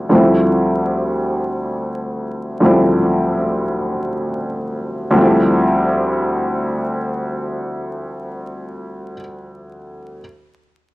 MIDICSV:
0, 0, Header, 1, 2, 480
1, 0, Start_track
1, 0, Key_signature, -1, "minor"
1, 0, Tempo, 500000
1, 10504, End_track
2, 0, Start_track
2, 0, Title_t, "Grand piano"
2, 0, Program_c, 0, 0
2, 0, Control_c, 0, 64, 127
2, 90, Note_on_c, 0, 38, 68
2, 99, Note_on_c, 0, 53, 62
2, 109, Note_on_c, 0, 55, 58
2, 118, Control_c, 0, 64, 0
2, 121, Note_on_c, 0, 57, 65
2, 132, Note_on_c, 0, 60, 60
2, 142, Note_on_c, 0, 64, 76
2, 307, Control_c, 0, 64, 127
2, 2483, Note_off_c, 0, 38, 0
2, 2490, Note_off_c, 0, 53, 0
2, 2495, Note_off_c, 0, 55, 0
2, 2498, Note_on_c, 0, 38, 67
2, 2500, Note_off_c, 0, 57, 0
2, 2506, Note_off_c, 0, 60, 0
2, 2508, Note_on_c, 0, 53, 63
2, 2511, Note_off_c, 0, 64, 0
2, 2519, Note_on_c, 0, 55, 64
2, 2529, Note_on_c, 0, 57, 63
2, 2540, Note_on_c, 0, 60, 61
2, 2551, Note_on_c, 0, 64, 76
2, 4890, Note_off_c, 0, 38, 0
2, 4904, Note_on_c, 0, 38, 82
2, 4906, Note_off_c, 0, 53, 0
2, 4912, Note_off_c, 0, 55, 0
2, 4917, Note_off_c, 0, 57, 0
2, 4923, Note_off_c, 0, 60, 0
2, 4926, Note_on_c, 0, 53, 72
2, 4928, Note_off_c, 0, 64, 0
2, 4946, Note_on_c, 0, 55, 77
2, 4969, Note_on_c, 0, 57, 74
2, 4970, Control_c, 0, 64, 0
2, 4990, Note_on_c, 0, 60, 72
2, 5012, Note_on_c, 0, 64, 91
2, 5164, Control_c, 0, 64, 127
2, 8757, Note_off_c, 0, 38, 0
2, 8768, Note_off_c, 0, 53, 0
2, 8778, Note_off_c, 0, 55, 0
2, 8789, Note_off_c, 0, 57, 0
2, 8800, Note_off_c, 0, 60, 0
2, 8811, Note_off_c, 0, 64, 0
2, 9795, Control_c, 0, 64, 0
2, 10504, End_track
0, 0, End_of_file